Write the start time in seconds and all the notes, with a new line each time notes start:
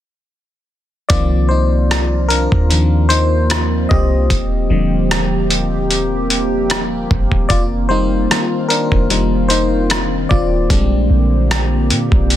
1.09 C2 D#3 F3 A#3 C4 F4 D5, kick, closed hi-hat
1.49 D#4 C5
1.91 cross-stick, closed hi-hat
2.29 D4 A#4, closed hi-hat
2.52 D#2, kick
2.70 D#3 F3 A#3 D4, closed hi-hat
3.09 D#4 C5, closed hi-hat
3.50 cross-stick, closed hi-hat
3.89 C2 G4 D#5, kick
4.30 D#1 G4, kick, closed hi-hat
4.70 D#1 D3 F3 G3
5.11 cross-stick, closed hi-hat
5.50 closed hi-hat
5.91 closed hi-hat
6.30 closed hi-hat
6.70 cross-stick, closed hi-hat
7.11 G1, kick
7.32 D#1, kick
7.49 F1 D#3 C4 F4 D5, kick, closed hi-hat
7.89 G3 A#3 D#4 C5
8.31 cross-stick, closed hi-hat
8.69 D4 A#4, closed hi-hat
8.92 F1, kick
9.10 G3 A#3 D#4, closed hi-hat
9.48 D#4 C5, closed hi-hat
9.90 cross-stick, closed hi-hat
10.29 D#1 F4 D5, kick
10.70 A#1 D3 G3 G#3 A#3 C4 D4 G4, kick, closed hi-hat
11.10 A#1
11.51 cross-stick, closed hi-hat
11.90 A#2, closed hi-hat
12.12 A#1, kick
12.30 closed hi-hat